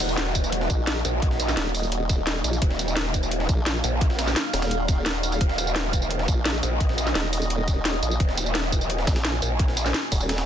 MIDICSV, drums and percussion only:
0, 0, Header, 1, 2, 480
1, 0, Start_track
1, 0, Key_signature, -6, "minor"
1, 0, Tempo, 348837
1, 1683, Time_signature, 4, 2, 24, 8
1, 14387, End_track
2, 0, Start_track
2, 0, Title_t, "Drums"
2, 1, Note_on_c, 9, 42, 71
2, 1, Note_on_c, 9, 54, 66
2, 3, Note_off_c, 9, 42, 0
2, 3, Note_on_c, 9, 38, 54
2, 3, Note_on_c, 9, 42, 70
2, 122, Note_off_c, 9, 54, 0
2, 122, Note_on_c, 9, 54, 29
2, 141, Note_off_c, 9, 38, 0
2, 141, Note_off_c, 9, 42, 0
2, 241, Note_on_c, 9, 38, 123
2, 241, Note_on_c, 9, 42, 103
2, 242, Note_off_c, 9, 38, 0
2, 242, Note_off_c, 9, 42, 0
2, 242, Note_on_c, 9, 38, 122
2, 242, Note_on_c, 9, 42, 92
2, 259, Note_off_c, 9, 54, 0
2, 362, Note_off_c, 9, 38, 0
2, 362, Note_on_c, 9, 38, 43
2, 380, Note_off_c, 9, 42, 0
2, 481, Note_on_c, 9, 42, 70
2, 481, Note_on_c, 9, 54, 64
2, 483, Note_off_c, 9, 42, 0
2, 483, Note_on_c, 9, 36, 64
2, 483, Note_on_c, 9, 42, 72
2, 500, Note_off_c, 9, 38, 0
2, 602, Note_off_c, 9, 54, 0
2, 602, Note_on_c, 9, 54, 30
2, 620, Note_off_c, 9, 36, 0
2, 621, Note_off_c, 9, 42, 0
2, 721, Note_on_c, 9, 42, 99
2, 723, Note_off_c, 9, 42, 0
2, 723, Note_on_c, 9, 42, 90
2, 740, Note_off_c, 9, 54, 0
2, 842, Note_on_c, 9, 38, 48
2, 860, Note_off_c, 9, 42, 0
2, 962, Note_on_c, 9, 42, 69
2, 962, Note_on_c, 9, 54, 63
2, 963, Note_on_c, 9, 36, 112
2, 980, Note_off_c, 9, 38, 0
2, 1099, Note_off_c, 9, 54, 0
2, 1100, Note_off_c, 9, 36, 0
2, 1100, Note_off_c, 9, 42, 0
2, 1201, Note_on_c, 9, 38, 123
2, 1201, Note_on_c, 9, 42, 100
2, 1203, Note_off_c, 9, 38, 0
2, 1203, Note_off_c, 9, 42, 0
2, 1203, Note_on_c, 9, 38, 121
2, 1203, Note_on_c, 9, 42, 89
2, 1340, Note_off_c, 9, 38, 0
2, 1340, Note_off_c, 9, 42, 0
2, 1442, Note_on_c, 9, 42, 72
2, 1442, Note_on_c, 9, 54, 64
2, 1443, Note_off_c, 9, 42, 0
2, 1443, Note_on_c, 9, 42, 71
2, 1580, Note_off_c, 9, 54, 0
2, 1581, Note_off_c, 9, 42, 0
2, 1682, Note_on_c, 9, 42, 98
2, 1683, Note_off_c, 9, 42, 0
2, 1683, Note_on_c, 9, 36, 126
2, 1683, Note_on_c, 9, 42, 90
2, 1803, Note_on_c, 9, 38, 57
2, 1820, Note_off_c, 9, 36, 0
2, 1820, Note_off_c, 9, 42, 0
2, 1921, Note_on_c, 9, 42, 70
2, 1921, Note_on_c, 9, 54, 62
2, 1922, Note_off_c, 9, 38, 0
2, 1922, Note_off_c, 9, 42, 0
2, 1922, Note_on_c, 9, 38, 40
2, 1922, Note_on_c, 9, 42, 70
2, 2042, Note_off_c, 9, 38, 0
2, 2042, Note_off_c, 9, 54, 0
2, 2042, Note_on_c, 9, 38, 39
2, 2042, Note_on_c, 9, 54, 29
2, 2060, Note_off_c, 9, 42, 0
2, 2162, Note_off_c, 9, 38, 0
2, 2162, Note_on_c, 9, 38, 127
2, 2162, Note_on_c, 9, 42, 101
2, 2163, Note_off_c, 9, 38, 0
2, 2163, Note_off_c, 9, 42, 0
2, 2163, Note_on_c, 9, 38, 120
2, 2163, Note_on_c, 9, 42, 94
2, 2179, Note_off_c, 9, 54, 0
2, 2300, Note_off_c, 9, 38, 0
2, 2300, Note_off_c, 9, 42, 0
2, 2402, Note_on_c, 9, 46, 77
2, 2402, Note_on_c, 9, 54, 61
2, 2403, Note_off_c, 9, 46, 0
2, 2403, Note_on_c, 9, 46, 86
2, 2522, Note_off_c, 9, 54, 0
2, 2522, Note_on_c, 9, 54, 28
2, 2540, Note_off_c, 9, 46, 0
2, 2640, Note_on_c, 9, 42, 100
2, 2643, Note_off_c, 9, 42, 0
2, 2643, Note_on_c, 9, 42, 92
2, 2659, Note_off_c, 9, 54, 0
2, 2780, Note_off_c, 9, 42, 0
2, 2881, Note_on_c, 9, 42, 72
2, 2881, Note_on_c, 9, 54, 59
2, 2883, Note_off_c, 9, 42, 0
2, 2883, Note_on_c, 9, 36, 109
2, 2883, Note_on_c, 9, 38, 56
2, 2883, Note_on_c, 9, 42, 67
2, 3019, Note_off_c, 9, 54, 0
2, 3020, Note_off_c, 9, 36, 0
2, 3021, Note_off_c, 9, 38, 0
2, 3021, Note_off_c, 9, 42, 0
2, 3121, Note_on_c, 9, 38, 127
2, 3121, Note_on_c, 9, 42, 100
2, 3122, Note_off_c, 9, 38, 0
2, 3122, Note_off_c, 9, 42, 0
2, 3122, Note_on_c, 9, 38, 123
2, 3122, Note_on_c, 9, 42, 93
2, 3243, Note_off_c, 9, 42, 0
2, 3243, Note_on_c, 9, 42, 46
2, 3260, Note_off_c, 9, 38, 0
2, 3362, Note_off_c, 9, 42, 0
2, 3362, Note_on_c, 9, 42, 72
2, 3362, Note_on_c, 9, 54, 64
2, 3363, Note_off_c, 9, 42, 0
2, 3363, Note_on_c, 9, 42, 71
2, 3482, Note_off_c, 9, 54, 0
2, 3482, Note_on_c, 9, 54, 28
2, 3501, Note_off_c, 9, 42, 0
2, 3602, Note_on_c, 9, 36, 127
2, 3602, Note_on_c, 9, 42, 92
2, 3620, Note_off_c, 9, 54, 0
2, 3723, Note_on_c, 9, 38, 58
2, 3740, Note_off_c, 9, 36, 0
2, 3740, Note_off_c, 9, 42, 0
2, 3842, Note_off_c, 9, 38, 0
2, 3842, Note_on_c, 9, 38, 54
2, 3842, Note_on_c, 9, 42, 72
2, 3842, Note_on_c, 9, 54, 60
2, 3962, Note_off_c, 9, 54, 0
2, 3962, Note_on_c, 9, 54, 28
2, 3980, Note_off_c, 9, 38, 0
2, 3980, Note_off_c, 9, 42, 0
2, 4081, Note_on_c, 9, 38, 127
2, 4081, Note_on_c, 9, 42, 100
2, 4082, Note_off_c, 9, 38, 0
2, 4082, Note_off_c, 9, 42, 0
2, 4082, Note_on_c, 9, 38, 123
2, 4082, Note_on_c, 9, 42, 96
2, 4100, Note_off_c, 9, 54, 0
2, 4201, Note_off_c, 9, 38, 0
2, 4201, Note_on_c, 9, 38, 43
2, 4220, Note_off_c, 9, 42, 0
2, 4321, Note_on_c, 9, 42, 71
2, 4322, Note_off_c, 9, 42, 0
2, 4322, Note_on_c, 9, 36, 67
2, 4322, Note_on_c, 9, 42, 69
2, 4322, Note_on_c, 9, 54, 59
2, 4339, Note_off_c, 9, 38, 0
2, 4443, Note_off_c, 9, 54, 0
2, 4443, Note_on_c, 9, 54, 27
2, 4459, Note_off_c, 9, 36, 0
2, 4459, Note_off_c, 9, 42, 0
2, 4561, Note_on_c, 9, 42, 96
2, 4580, Note_off_c, 9, 54, 0
2, 4681, Note_on_c, 9, 38, 48
2, 4699, Note_off_c, 9, 42, 0
2, 4800, Note_on_c, 9, 42, 68
2, 4801, Note_off_c, 9, 42, 0
2, 4801, Note_on_c, 9, 42, 67
2, 4801, Note_on_c, 9, 54, 59
2, 4802, Note_on_c, 9, 36, 114
2, 4818, Note_off_c, 9, 38, 0
2, 4939, Note_off_c, 9, 36, 0
2, 4939, Note_off_c, 9, 42, 0
2, 4939, Note_off_c, 9, 54, 0
2, 5040, Note_on_c, 9, 38, 117
2, 5040, Note_on_c, 9, 42, 89
2, 5042, Note_off_c, 9, 38, 0
2, 5042, Note_off_c, 9, 42, 0
2, 5042, Note_on_c, 9, 38, 127
2, 5042, Note_on_c, 9, 42, 97
2, 5179, Note_off_c, 9, 38, 0
2, 5179, Note_off_c, 9, 42, 0
2, 5281, Note_on_c, 9, 42, 74
2, 5282, Note_off_c, 9, 42, 0
2, 5282, Note_on_c, 9, 42, 69
2, 5282, Note_on_c, 9, 54, 61
2, 5420, Note_off_c, 9, 42, 0
2, 5420, Note_off_c, 9, 54, 0
2, 5520, Note_on_c, 9, 42, 88
2, 5521, Note_on_c, 9, 36, 124
2, 5522, Note_off_c, 9, 42, 0
2, 5522, Note_on_c, 9, 42, 93
2, 5641, Note_on_c, 9, 38, 58
2, 5659, Note_off_c, 9, 36, 0
2, 5660, Note_off_c, 9, 42, 0
2, 5760, Note_off_c, 9, 38, 0
2, 5760, Note_on_c, 9, 38, 111
2, 5760, Note_on_c, 9, 42, 82
2, 5762, Note_off_c, 9, 42, 0
2, 5762, Note_on_c, 9, 42, 67
2, 5762, Note_on_c, 9, 54, 56
2, 5882, Note_off_c, 9, 38, 0
2, 5882, Note_off_c, 9, 54, 0
2, 5882, Note_on_c, 9, 38, 38
2, 5882, Note_on_c, 9, 54, 27
2, 5899, Note_off_c, 9, 42, 0
2, 6000, Note_off_c, 9, 38, 0
2, 6000, Note_on_c, 9, 38, 120
2, 6000, Note_on_c, 9, 42, 95
2, 6002, Note_off_c, 9, 38, 0
2, 6002, Note_off_c, 9, 42, 0
2, 6002, Note_on_c, 9, 38, 127
2, 6002, Note_on_c, 9, 42, 96
2, 6020, Note_off_c, 9, 54, 0
2, 6139, Note_off_c, 9, 38, 0
2, 6139, Note_off_c, 9, 42, 0
2, 6240, Note_on_c, 9, 38, 109
2, 6240, Note_on_c, 9, 42, 81
2, 6242, Note_on_c, 9, 46, 83
2, 6242, Note_on_c, 9, 54, 58
2, 6360, Note_off_c, 9, 38, 0
2, 6360, Note_off_c, 9, 42, 0
2, 6360, Note_on_c, 9, 38, 111
2, 6360, Note_on_c, 9, 42, 81
2, 6362, Note_off_c, 9, 54, 0
2, 6362, Note_on_c, 9, 54, 26
2, 6379, Note_off_c, 9, 46, 0
2, 6481, Note_off_c, 9, 42, 0
2, 6481, Note_on_c, 9, 42, 88
2, 6482, Note_off_c, 9, 42, 0
2, 6482, Note_on_c, 9, 42, 92
2, 6498, Note_off_c, 9, 38, 0
2, 6500, Note_off_c, 9, 54, 0
2, 6620, Note_off_c, 9, 42, 0
2, 6720, Note_on_c, 9, 38, 55
2, 6720, Note_on_c, 9, 42, 69
2, 6721, Note_off_c, 9, 42, 0
2, 6721, Note_on_c, 9, 36, 110
2, 6721, Note_on_c, 9, 42, 67
2, 6721, Note_on_c, 9, 54, 58
2, 6858, Note_off_c, 9, 38, 0
2, 6859, Note_off_c, 9, 36, 0
2, 6859, Note_off_c, 9, 42, 0
2, 6859, Note_off_c, 9, 54, 0
2, 6961, Note_on_c, 9, 38, 123
2, 6961, Note_on_c, 9, 42, 91
2, 6962, Note_off_c, 9, 38, 0
2, 6962, Note_off_c, 9, 42, 0
2, 6962, Note_on_c, 9, 38, 126
2, 6962, Note_on_c, 9, 42, 94
2, 7082, Note_off_c, 9, 42, 0
2, 7082, Note_on_c, 9, 42, 45
2, 7100, Note_off_c, 9, 38, 0
2, 7201, Note_off_c, 9, 42, 0
2, 7201, Note_on_c, 9, 42, 82
2, 7203, Note_off_c, 9, 42, 0
2, 7203, Note_on_c, 9, 42, 67
2, 7203, Note_on_c, 9, 54, 59
2, 7321, Note_on_c, 9, 38, 42
2, 7323, Note_off_c, 9, 54, 0
2, 7323, Note_on_c, 9, 54, 26
2, 7340, Note_off_c, 9, 42, 0
2, 7440, Note_on_c, 9, 42, 88
2, 7442, Note_off_c, 9, 42, 0
2, 7442, Note_on_c, 9, 36, 124
2, 7442, Note_on_c, 9, 42, 92
2, 7458, Note_off_c, 9, 38, 0
2, 7460, Note_off_c, 9, 54, 0
2, 7560, Note_on_c, 9, 38, 57
2, 7579, Note_off_c, 9, 36, 0
2, 7580, Note_off_c, 9, 42, 0
2, 7679, Note_off_c, 9, 38, 0
2, 7679, Note_on_c, 9, 38, 53
2, 7679, Note_on_c, 9, 42, 70
2, 7682, Note_off_c, 9, 42, 0
2, 7682, Note_on_c, 9, 42, 65
2, 7682, Note_on_c, 9, 54, 58
2, 7803, Note_off_c, 9, 54, 0
2, 7803, Note_on_c, 9, 54, 27
2, 7817, Note_off_c, 9, 38, 0
2, 7820, Note_off_c, 9, 42, 0
2, 7920, Note_on_c, 9, 38, 123
2, 7920, Note_on_c, 9, 42, 93
2, 7923, Note_off_c, 9, 38, 0
2, 7923, Note_off_c, 9, 42, 0
2, 7923, Note_on_c, 9, 38, 123
2, 7923, Note_on_c, 9, 42, 92
2, 7941, Note_off_c, 9, 54, 0
2, 8039, Note_off_c, 9, 38, 0
2, 8039, Note_on_c, 9, 38, 43
2, 8060, Note_off_c, 9, 42, 0
2, 8160, Note_on_c, 9, 42, 70
2, 8162, Note_on_c, 9, 36, 63
2, 8163, Note_off_c, 9, 42, 0
2, 8163, Note_on_c, 9, 42, 67
2, 8163, Note_on_c, 9, 54, 60
2, 8177, Note_off_c, 9, 38, 0
2, 8282, Note_off_c, 9, 54, 0
2, 8282, Note_on_c, 9, 54, 27
2, 8300, Note_off_c, 9, 36, 0
2, 8301, Note_off_c, 9, 42, 0
2, 8401, Note_on_c, 9, 42, 90
2, 8420, Note_off_c, 9, 54, 0
2, 8522, Note_on_c, 9, 38, 48
2, 8539, Note_off_c, 9, 42, 0
2, 8641, Note_on_c, 9, 42, 68
2, 8642, Note_off_c, 9, 42, 0
2, 8642, Note_on_c, 9, 36, 109
2, 8642, Note_on_c, 9, 42, 64
2, 8642, Note_on_c, 9, 54, 58
2, 8659, Note_off_c, 9, 38, 0
2, 8780, Note_off_c, 9, 36, 0
2, 8780, Note_off_c, 9, 42, 0
2, 8780, Note_off_c, 9, 54, 0
2, 8882, Note_on_c, 9, 38, 123
2, 8882, Note_on_c, 9, 42, 93
2, 9020, Note_off_c, 9, 38, 0
2, 9020, Note_off_c, 9, 42, 0
2, 9121, Note_on_c, 9, 42, 70
2, 9123, Note_off_c, 9, 42, 0
2, 9123, Note_on_c, 9, 42, 66
2, 9123, Note_on_c, 9, 54, 60
2, 9261, Note_off_c, 9, 42, 0
2, 9261, Note_off_c, 9, 54, 0
2, 9363, Note_on_c, 9, 36, 120
2, 9363, Note_on_c, 9, 42, 91
2, 9364, Note_off_c, 9, 42, 0
2, 9364, Note_on_c, 9, 42, 90
2, 9483, Note_on_c, 9, 38, 57
2, 9500, Note_off_c, 9, 36, 0
2, 9501, Note_off_c, 9, 42, 0
2, 9602, Note_off_c, 9, 38, 0
2, 9602, Note_on_c, 9, 38, 39
2, 9602, Note_on_c, 9, 42, 71
2, 9604, Note_off_c, 9, 42, 0
2, 9604, Note_on_c, 9, 42, 65
2, 9604, Note_on_c, 9, 54, 59
2, 9724, Note_off_c, 9, 38, 0
2, 9724, Note_off_c, 9, 54, 0
2, 9724, Note_on_c, 9, 38, 36
2, 9724, Note_on_c, 9, 54, 28
2, 9742, Note_off_c, 9, 42, 0
2, 9842, Note_off_c, 9, 38, 0
2, 9842, Note_on_c, 9, 38, 124
2, 9842, Note_on_c, 9, 42, 93
2, 9844, Note_off_c, 9, 38, 0
2, 9844, Note_off_c, 9, 42, 0
2, 9844, Note_on_c, 9, 38, 117
2, 9844, Note_on_c, 9, 42, 89
2, 9862, Note_off_c, 9, 54, 0
2, 9982, Note_off_c, 9, 38, 0
2, 9982, Note_off_c, 9, 42, 0
2, 10082, Note_on_c, 9, 46, 83
2, 10084, Note_off_c, 9, 46, 0
2, 10084, Note_on_c, 9, 46, 84
2, 10084, Note_on_c, 9, 54, 60
2, 10206, Note_off_c, 9, 54, 0
2, 10206, Note_on_c, 9, 54, 28
2, 10222, Note_off_c, 9, 46, 0
2, 10322, Note_on_c, 9, 42, 88
2, 10325, Note_off_c, 9, 42, 0
2, 10325, Note_on_c, 9, 42, 92
2, 10343, Note_off_c, 9, 54, 0
2, 10463, Note_off_c, 9, 42, 0
2, 10562, Note_on_c, 9, 38, 55
2, 10562, Note_on_c, 9, 42, 69
2, 10563, Note_on_c, 9, 36, 108
2, 10565, Note_off_c, 9, 42, 0
2, 10565, Note_on_c, 9, 42, 62
2, 10565, Note_on_c, 9, 54, 61
2, 10700, Note_off_c, 9, 38, 0
2, 10701, Note_off_c, 9, 36, 0
2, 10702, Note_off_c, 9, 42, 0
2, 10702, Note_off_c, 9, 54, 0
2, 10803, Note_on_c, 9, 38, 122
2, 10803, Note_on_c, 9, 42, 93
2, 10804, Note_off_c, 9, 38, 0
2, 10804, Note_off_c, 9, 42, 0
2, 10804, Note_on_c, 9, 38, 120
2, 10804, Note_on_c, 9, 42, 92
2, 10923, Note_off_c, 9, 42, 0
2, 10923, Note_on_c, 9, 42, 46
2, 10942, Note_off_c, 9, 38, 0
2, 11043, Note_off_c, 9, 42, 0
2, 11043, Note_on_c, 9, 42, 73
2, 11045, Note_off_c, 9, 42, 0
2, 11045, Note_on_c, 9, 42, 65
2, 11045, Note_on_c, 9, 54, 62
2, 11164, Note_off_c, 9, 54, 0
2, 11164, Note_on_c, 9, 54, 28
2, 11182, Note_off_c, 9, 42, 0
2, 11283, Note_on_c, 9, 36, 116
2, 11283, Note_on_c, 9, 42, 90
2, 11285, Note_off_c, 9, 42, 0
2, 11285, Note_on_c, 9, 42, 93
2, 11302, Note_off_c, 9, 54, 0
2, 11403, Note_on_c, 9, 38, 56
2, 11421, Note_off_c, 9, 36, 0
2, 11422, Note_off_c, 9, 42, 0
2, 11524, Note_off_c, 9, 38, 0
2, 11524, Note_on_c, 9, 38, 53
2, 11524, Note_on_c, 9, 42, 68
2, 11524, Note_on_c, 9, 54, 62
2, 11645, Note_off_c, 9, 54, 0
2, 11645, Note_on_c, 9, 54, 28
2, 11661, Note_off_c, 9, 38, 0
2, 11662, Note_off_c, 9, 42, 0
2, 11763, Note_on_c, 9, 38, 122
2, 11763, Note_on_c, 9, 42, 91
2, 11764, Note_off_c, 9, 38, 0
2, 11764, Note_off_c, 9, 42, 0
2, 11764, Note_on_c, 9, 38, 119
2, 11764, Note_on_c, 9, 42, 92
2, 11782, Note_off_c, 9, 54, 0
2, 11883, Note_off_c, 9, 38, 0
2, 11883, Note_on_c, 9, 38, 44
2, 11902, Note_off_c, 9, 42, 0
2, 12003, Note_on_c, 9, 36, 62
2, 12003, Note_on_c, 9, 42, 72
2, 12005, Note_off_c, 9, 42, 0
2, 12005, Note_on_c, 9, 42, 68
2, 12005, Note_on_c, 9, 54, 62
2, 12020, Note_off_c, 9, 38, 0
2, 12124, Note_off_c, 9, 54, 0
2, 12124, Note_on_c, 9, 54, 30
2, 12141, Note_off_c, 9, 36, 0
2, 12142, Note_off_c, 9, 42, 0
2, 12242, Note_on_c, 9, 42, 93
2, 12243, Note_off_c, 9, 42, 0
2, 12243, Note_on_c, 9, 42, 92
2, 12262, Note_off_c, 9, 54, 0
2, 12362, Note_on_c, 9, 38, 49
2, 12381, Note_off_c, 9, 42, 0
2, 12483, Note_off_c, 9, 38, 0
2, 12483, Note_on_c, 9, 36, 102
2, 12483, Note_on_c, 9, 38, 105
2, 12483, Note_on_c, 9, 42, 78
2, 12484, Note_off_c, 9, 42, 0
2, 12484, Note_on_c, 9, 42, 66
2, 12484, Note_on_c, 9, 54, 61
2, 12604, Note_off_c, 9, 38, 0
2, 12604, Note_off_c, 9, 42, 0
2, 12604, Note_on_c, 9, 38, 108
2, 12604, Note_on_c, 9, 42, 83
2, 12621, Note_off_c, 9, 36, 0
2, 12622, Note_off_c, 9, 54, 0
2, 12723, Note_off_c, 9, 38, 0
2, 12723, Note_off_c, 9, 42, 0
2, 12723, Note_on_c, 9, 38, 115
2, 12723, Note_on_c, 9, 42, 92
2, 12861, Note_off_c, 9, 38, 0
2, 12861, Note_off_c, 9, 42, 0
2, 12963, Note_on_c, 9, 42, 71
2, 12963, Note_on_c, 9, 54, 63
2, 13101, Note_off_c, 9, 42, 0
2, 13101, Note_off_c, 9, 54, 0
2, 13202, Note_on_c, 9, 42, 97
2, 13203, Note_on_c, 9, 36, 121
2, 13204, Note_off_c, 9, 42, 0
2, 13204, Note_on_c, 9, 42, 90
2, 13323, Note_on_c, 9, 38, 57
2, 13340, Note_off_c, 9, 36, 0
2, 13341, Note_off_c, 9, 42, 0
2, 13442, Note_on_c, 9, 42, 67
2, 13442, Note_on_c, 9, 54, 65
2, 13443, Note_off_c, 9, 38, 0
2, 13443, Note_off_c, 9, 42, 0
2, 13443, Note_on_c, 9, 38, 40
2, 13443, Note_on_c, 9, 42, 72
2, 13563, Note_off_c, 9, 38, 0
2, 13563, Note_off_c, 9, 54, 0
2, 13563, Note_on_c, 9, 38, 36
2, 13563, Note_on_c, 9, 54, 30
2, 13581, Note_off_c, 9, 42, 0
2, 13682, Note_off_c, 9, 38, 0
2, 13682, Note_on_c, 9, 38, 120
2, 13682, Note_on_c, 9, 42, 95
2, 13683, Note_off_c, 9, 38, 0
2, 13683, Note_off_c, 9, 42, 0
2, 13683, Note_on_c, 9, 38, 124
2, 13683, Note_on_c, 9, 42, 94
2, 13701, Note_off_c, 9, 54, 0
2, 13820, Note_off_c, 9, 38, 0
2, 13820, Note_off_c, 9, 42, 0
2, 13922, Note_on_c, 9, 46, 82
2, 13922, Note_on_c, 9, 54, 64
2, 13923, Note_off_c, 9, 46, 0
2, 13923, Note_on_c, 9, 36, 62
2, 13923, Note_on_c, 9, 46, 83
2, 14042, Note_off_c, 9, 54, 0
2, 14042, Note_on_c, 9, 54, 31
2, 14060, Note_off_c, 9, 36, 0
2, 14060, Note_off_c, 9, 46, 0
2, 14162, Note_on_c, 9, 42, 96
2, 14163, Note_off_c, 9, 42, 0
2, 14163, Note_on_c, 9, 38, 109
2, 14163, Note_on_c, 9, 42, 81
2, 14179, Note_off_c, 9, 54, 0
2, 14283, Note_off_c, 9, 38, 0
2, 14283, Note_off_c, 9, 42, 0
2, 14283, Note_on_c, 9, 38, 108
2, 14283, Note_on_c, 9, 42, 82
2, 14387, Note_off_c, 9, 38, 0
2, 14387, Note_off_c, 9, 42, 0
2, 14387, End_track
0, 0, End_of_file